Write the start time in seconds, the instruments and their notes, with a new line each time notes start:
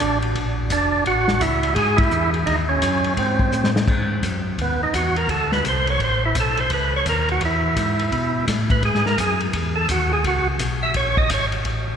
Already playing: tonewheel organ D4
0.00 tonewheel organ A1, kick, hi-hat pedal, ride
0.22 ride
0.35 tonewheel organ A#1, kick, ride
0.70 tonewheel organ F1 D4, kick, hi-hat pedal, ride
1.05 tonewheel organ A1 F#4, kick, ride
1.28 snare
1.41 tonewheel organ C#2 E4, kick, hi-hat pedal, ride
1.63 ride
1.75 tonewheel organ G#2 G#4, kick, ride
1.97 tonewheel organ E4, kick, ride
2.11 tonewheel organ E2, hi-hat pedal
2.34 ride
2.46 tonewheel organ D#2 D#4, kick, ride
2.69 tonewheel organ C#4
2.82 tonewheel organ F#2, kick, hi-hat pedal, ride
3.04 ride
3.17 tonewheel organ G#2 C4, kick, ride
3.39 kick
3.52 tonewheel organ A2, hi-hat pedal
3.64 snare
3.76 snare
3.87 tonewheel organ G#2, kick, crash
4.22 tonewheel organ F#2, kick, hi-hat pedal, ride
4.58 tonewheel organ D#2 B3, kick, ride
4.80 tonewheel organ D#2 D#4
4.93 tonewheel organ E2 F#4, kick, hi-hat pedal, ride
5.16 tonewheel organ A#4, ride
5.28 tonewheel organ D2 A4, kick, ride
5.52 tonewheel organ B4, snare
5.64 tonewheel organ C2, kick, hi-hat pedal, ride
5.68 tonewheel organ C5
5.87 tonewheel organ C#5, ride
5.99 tonewheel organ A1, kick, ride
6.04 tonewheel organ C5
6.25 tonewheel organ E4
6.35 tonewheel organ B1, kick, hi-hat pedal, ride
6.40 tonewheel organ A4
6.57 tonewheel organ C5, ride
6.70 tonewheel organ C#2 B4, kick, ride
6.96 tonewheel organ C#5
7.06 tonewheel organ D#2 A#4, kick, hi-hat pedal, ride
7.29 tonewheel organ F#4, ride
7.41 tonewheel organ E2, kick, ride
7.45 tonewheel organ E4
7.76 tonewheel organ G#2, kick, hi-hat pedal, ride
7.99 ride
8.12 tonewheel organ B2, kick, ride
8.48 tonewheel organ A2, kick, snare, hi-hat pedal, ride
8.70 tonewheel organ B4, kick, ride
8.83 tonewheel organ G#2 G#4, kick, ride
8.95 snare
9.06 tonewheel organ A#4, snare
9.18 tonewheel organ F#2 G#4, kick, hi-hat pedal, ride
9.40 ride
9.53 tonewheel organ E2, kick, ride
9.76 tonewheel organ A4
9.89 tonewheel organ D#2 F#4, kick, hi-hat pedal, ride
10.13 tonewheel organ G#4
10.24 tonewheel organ C#2 F#4, kick, ride
10.59 tonewheel organ B1, kick, hi-hat pedal, ride
10.83 tonewheel organ E5
10.94 tonewheel organ A#1 C#5, kick, ride
11.17 tonewheel organ D#5, kick
11.30 tonewheel organ G#1, kick, hi-hat pedal, ride
11.34 tonewheel organ C#5
11.52 ride
11.65 tonewheel organ A1, kick, ride
11.88 tonewheel organ A1